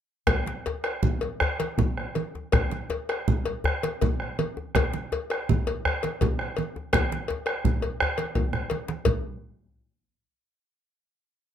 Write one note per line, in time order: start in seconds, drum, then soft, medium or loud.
0.27 bombo rim loud
0.27 bombo low loud
0.27 cowbell medium
0.27 low conga medium
0.27 djembe bass medium
0.46 djembe slap medium
0.46 high conga soft
0.66 cowbell soft
0.66 djembe tone medium
0.84 bombo rim medium
0.84 cowbell soft
1.03 bombo low medium
1.03 high conga medium
1.03 low conga medium
1.21 cowbell soft
1.21 djembe tone soft
1.40 bombo rim loud
1.40 djembe bass medium
1.59 bombo rim soft
1.59 cowbell soft
1.59 djembe slap medium
1.59 high conga medium
1.78 bombo rim soft
1.78 bombo low medium
1.78 djembe tone medium
1.78 high conga soft
1.78 low conga medium
1.97 bombo rim medium
2.15 cowbell soft
2.15 djembe slap soft
2.15 high conga medium
2.35 djembe tone medium
2.52 bombo rim medium
2.52 bombo low medium
2.52 cowbell medium
2.52 djembe bass medium
2.52 low conga medium
2.71 djembe slap medium
2.71 high conga soft
2.90 cowbell soft
2.90 djembe tone medium
3.09 bombo rim medium
3.09 cowbell soft
3.28 bombo low medium
3.28 low conga medium
3.45 cowbell soft
3.45 djembe tone medium
3.64 bombo rim medium
3.64 djembe bass medium
3.83 bombo rim soft
3.83 cowbell medium
3.83 djembe slap medium
3.83 high conga medium
4.01 bombo rim soft
4.01 bombo low medium
4.01 cowbell soft
4.01 djembe tone medium
4.01 high conga soft
4.01 low conga medium
4.20 bombo rim medium
4.39 cowbell medium
4.39 djembe slap soft
4.39 high conga medium
4.57 djembe slap soft
4.57 djembe tone medium
4.75 bombo rim medium
4.75 bombo low medium
4.75 cowbell medium
4.75 djembe bass medium
4.75 low conga medium
4.93 djembe slap medium
4.93 high conga medium
5.12 cowbell medium
5.12 djembe tone medium
5.30 bombo rim medium
5.30 cowbell soft
5.49 bombo low medium
5.49 high conga medium
5.49 low conga medium
5.67 cowbell medium
5.67 djembe tone medium
5.85 bombo rim medium
5.85 djembe bass medium
6.03 cowbell soft
6.03 djembe slap soft
6.03 high conga medium
6.21 bombo low medium
6.21 cowbell soft
6.21 high conga soft
6.21 djembe tone medium
6.21 low conga medium
6.39 bombo rim medium
6.57 cowbell soft
6.57 djembe slap soft
6.57 high conga medium
6.76 djembe slap soft
6.76 djembe tone medium
6.93 bombo rim loud
6.93 bombo low medium
6.93 cowbell medium
6.93 djembe slap soft
6.93 high conga soft
6.93 low conga medium
6.93 djembe bass medium
7.12 djembe slap medium
7.12 high conga soft
7.28 cowbell soft
7.28 djembe tone medium
7.46 bombo rim medium
7.46 cowbell soft
7.46 djembe slap soft
7.65 bombo rim soft
7.65 bombo low medium
7.65 djembe slap soft
7.65 high conga medium
7.65 low conga medium
7.82 cowbell soft
7.82 djembe tone soft
8.00 bombo rim loud
8.00 djembe slap soft
8.00 high conga soft
8.00 djembe bass medium
8.18 cowbell soft
8.18 djembe slap soft
8.18 high conga soft
8.35 bombo rim soft
8.35 bombo low medium
8.35 cowbell soft
8.35 low conga soft
8.35 djembe bass soft
8.53 bombo rim medium
8.53 low conga soft
8.53 djembe bass soft
8.70 bombo rim soft
8.70 cowbell soft
8.70 djembe slap medium
8.70 high conga medium
8.88 bombo rim soft
8.88 djembe slap medium
8.88 high conga medium
9.05 bombo low medium
9.05 cowbell medium
9.05 djembe bass medium
9.05 low conga medium